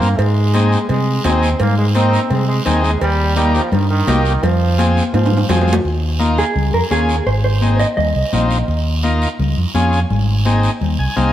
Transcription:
0.00 0.17 G2 medium
0.00 0.20 A#3 medium
0.00 short guiro medium
0.18 0.75 G#2 loud
0.18 0.89 G#3 loud
0.18 cowbell loud
0.18 long guiro medium
0.54 0.79 C4 medium
0.54 0.79 D#4 medium
0.54 0.79 G#4 medium
0.54 cowbell medium
0.54 high conga medium
0.54 short guiro medium
0.72 short guiro medium
0.89 1.18 C3 loud
0.89 1.26 G#3 medium
0.89 cowbell medium
0.89 high conga soft
0.89 low conga medium
0.89 long guiro medium
1.24 1.53 D#2 loud
1.24 1.49 C4 medium
1.24 1.59 C4 medium
1.24 1.50 D#4 medium
1.24 1.50 G#4 medium
1.24 cowbell medium
1.24 high conga medium
1.24 low timbale medium
1.24 short guiro medium
1.43 short guiro medium
1.60 2.17 G#2 loud
1.60 1.76 A#3 loud
1.60 cowbell loud
1.60 high conga soft
1.60 low conga medium
1.60 long guiro medium
1.78 1.86 G#3 medium
1.95 2.32 C4 loud
1.95 2.20 C4 medium
1.95 2.20 D#4 medium
1.95 2.20 A#4 medium
1.95 cowbell medium
1.95 high conga medium
1.95 short guiro medium
2.13 short guiro medium
2.30 2.59 C3 loud
2.30 2.47 G#3 loud
2.30 cowbell medium
2.30 high conga soft
2.30 low conga medium
2.30 long guiro medium
2.47 2.64 G#3 medium
2.65 2.95 D#2 loud
2.65 2.85 D#3 medium
2.65 2.91 C4 medium
2.65 2.91 D#4 medium
2.65 2.91 G#4 medium
2.65 cowbell medium
2.65 high conga medium
2.65 low conga medium
2.65 short guiro medium
2.83 3.01 G#3 medium
2.83 short guiro medium
3.01 3.58 D#2 loud
3.01 3.34 G3 loud
3.01 cowbell loud
3.01 high conga soft
3.01 long guiro medium
3.36 3.53 G3 medium
3.36 3.61 A#3 medium
3.36 3.62 D#4 medium
3.36 3.62 G4 medium
3.36 cowbell medium
3.36 high conga medium
3.36 short guiro medium
3.54 3.71 F3 medium
3.54 short guiro medium
3.72 4.01 G2 loud
3.72 3.89 D#3 medium
3.72 cowbell medium
3.72 high conga soft
3.72 low conga medium
3.72 long guiro medium
3.90 4.44 D#3 medium
4.07 4.36 C2 loud
4.07 4.32 A#3 medium
4.07 4.33 D#4 medium
4.07 4.33 G4 medium
4.07 cowbell medium
4.07 high conga medium
4.07 low timbale medium
4.07 short guiro medium
4.25 short guiro medium
4.43 5.00 F2 loud
4.43 4.87 F3 loud
4.43 cowbell loud
4.43 high conga soft
4.43 low conga medium
4.43 long guiro medium
4.78 5.03 C4 medium
4.78 5.03 F4 medium
4.78 5.03 G#4 medium
4.78 cowbell medium
4.78 high conga medium
4.78 short guiro medium
4.97 high conga medium
4.97 short guiro medium
5.14 5.42 G#2 loud
5.14 5.47 F3 medium
5.14 cowbell medium
5.14 high conga medium
5.14 high timbale medium
5.14 long guiro medium
5.26 high timbale medium
5.32 low conga medium
5.37 high timbale medium
5.49 5.78 F2 loud
5.49 5.82 F3 medium
5.49 5.74 C4 medium
5.49 5.74 F4 medium
5.49 5.74 G#4 medium
5.49 cowbell medium
5.49 low conga medium
5.49 low timbale medium
5.49 short guiro medium
5.61 low timbale medium
5.68 low conga medium
5.68 short guiro medium
5.73 low timbale loud
5.85 6.41 D#2 medium
5.85 high conga soft
5.85 long guiro medium
6.19 6.45 D#4 medium
6.19 6.45 F4 medium
6.19 6.45 A#4 medium
6.19 high conga medium
6.19 short guiro medium
6.38 6.74 G#4 medium
6.38 short guiro medium
6.55 6.70 C#2 medium
6.55 high conga soft
6.55 low conga medium
6.55 long guiro medium
6.73 6.80 F2 medium
6.73 6.79 A#4 medium
6.91 7.19 D#2 medium
6.91 7.16 C#4 medium
6.91 7.16 F4 medium
6.91 7.16 G#4 medium
6.91 7.24 G#4 medium
6.91 high conga medium
6.91 short guiro medium
7.09 short guiro medium
7.26 7.83 G#1 loud
7.26 7.32 C5 medium
7.26 high conga soft
7.26 long guiro medium
7.44 7.79 C5 medium
7.62 7.87 C4 medium
7.62 7.87 D#4 medium
7.62 7.87 G#4 medium
7.62 high conga medium
7.62 short guiro medium
7.79 7.84 D#5 medium
7.79 short guiro medium
7.97 8.12 D#2 medium
7.97 8.47 D#5 medium
7.97 high conga soft
7.97 low conga medium
7.97 long guiro medium
8.15 8.22 C2 medium
8.33 8.61 A#1 medium
8.33 8.58 C4 medium
8.33 8.58 D#4 medium
8.33 8.58 F4 medium
8.33 high conga medium
8.33 low conga medium
8.33 short guiro medium
8.51 short guiro medium
8.68 9.25 D#2 loud
8.68 high conga soft
8.68 long guiro medium
9.03 9.29 D#4 medium
9.03 9.29 F4 medium
9.03 9.29 A#4 medium
9.03 high conga medium
9.03 short guiro medium
9.22 short guiro medium
9.39 9.54 C#2 loud
9.39 high conga soft
9.39 low conga medium
9.39 long guiro medium
9.57 9.64 F2 medium
9.74 10.03 F2 medium
9.74 10.00 C#4 medium
9.74 10.00 F4 medium
9.74 10.00 G#4 medium
9.74 high conga medium
9.74 short guiro medium
9.93 short guiro medium
10.10 10.67 G#1 loud
10.10 high conga soft
10.10 low conga medium
10.10 long guiro medium
10.45 10.70 C4 medium
10.45 10.71 D#4 medium
10.45 10.71 G#4 medium
10.45 high conga medium
10.45 short guiro medium
10.63 short guiro medium
10.81 10.95 D#2 medium
10.81 high conga soft
10.81 low conga medium
10.81 long guiro medium
10.99 11.06 C2 medium
10.99 11.16 G#5 medium
11.16 11.33 C2 medium
11.16 11.33 C4 medium
11.16 11.33 D#4 medium
11.16 11.33 G#4 medium
11.16 11.33 F5 medium
11.16 high conga medium
11.16 low conga medium
11.16 short guiro medium

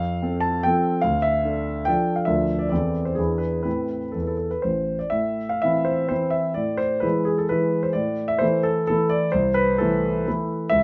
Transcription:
0.00 0.20 F2 soft
0.00 0.42 F5 medium
0.22 0.60 C4 soft
0.22 0.60 A4 soft
0.40 0.62 A5 medium
0.63 1.00 F3 soft
0.63 1.01 C4 soft
0.63 1.01 A4 soft
0.63 1.03 G5 medium
1.02 1.44 D2 soft
1.02 1.22 F5 medium
1.22 1.87 E5 medium
1.44 1.84 D4 soft
1.44 1.84 A4 soft
1.85 2.24 F3 soft
1.85 2.24 D4 soft
1.85 2.25 A4 soft
1.85 2.17 G5 medium
2.16 2.27 F5 soft
2.25 2.70 D2 soft
2.25 2.68 F3 soft
2.25 2.68 D4 soft
2.25 2.68 A#4 soft
2.25 2.59 E5 medium
2.59 2.68 D5 medium
2.69 3.16 E2 soft
2.69 3.14 E3 soft
2.69 3.15 C4 soft
2.69 3.15 A4 soft
2.69 3.06 D5 medium
3.05 3.18 C5 soft
3.15 3.64 E2 soft
3.15 3.61 E3 soft
3.15 3.61 D4 soft
3.15 3.62 E4 soft
3.15 3.40 G#4 soft
3.38 3.61 B4 soft
3.63 4.00 A2 soft
3.63 4.05 C4 soft
3.63 4.05 E4 soft
3.63 4.13 B4 soft
4.12 4.49 E2 soft
4.12 4.21 A4 soft
4.22 4.31 B4 soft
4.27 4.36 A4 soft
4.37 4.51 A4 soft
4.51 4.63 B4 soft
4.62 4.98 A1 soft
4.62 5.00 C5 soft
4.99 5.12 D5 soft
5.10 5.61 A2 soft
5.10 5.49 E5 medium
5.49 5.63 F5 medium
5.62 6.07 E3 soft
5.62 6.08 C4 soft
5.62 6.08 E4 soft
5.62 5.87 E5 medium
5.85 6.07 C5 medium
6.09 6.53 E3 soft
6.09 6.52 C4 soft
6.09 6.53 E4 soft
6.09 6.33 C5 medium
6.30 6.55 E5 medium
6.54 7.03 A2 soft
6.54 6.79 D5 medium
6.77 7.03 C5 medium
7.00 7.47 E3 soft
7.00 7.47 G#3 soft
7.00 7.47 E4 soft
7.00 7.26 B4 soft
7.25 7.38 G#4 medium
7.38 7.51 A4 soft
7.49 7.92 E3 soft
7.49 7.92 G#3 soft
7.49 7.92 E4 soft
7.49 7.84 B4 medium
7.83 7.95 C5 soft
7.93 8.41 A2 soft
7.93 8.29 D5 medium
8.28 8.41 E5 medium
8.39 8.85 E3 soft
8.39 8.85 A3 soft
8.39 8.86 E4 soft
8.39 8.65 C5 medium
8.63 8.86 A4 medium
8.87 9.30 E3 soft
8.87 9.30 A3 soft
8.87 9.30 E4 soft
8.87 9.11 A4 medium
9.09 9.32 D5 medium
9.32 9.78 C2 soft
9.32 9.55 C5 medium
9.54 9.79 B4 medium
9.78 10.23 E3 soft
9.78 10.24 A3 soft
9.78 10.24 E4 soft
9.78 10.03 A4 medium
10.28 10.68 E3 soft
10.28 10.68 A3 soft
10.28 10.68 E4 soft
10.70 10.83 C#2 soft
10.70 10.83 E5 medium

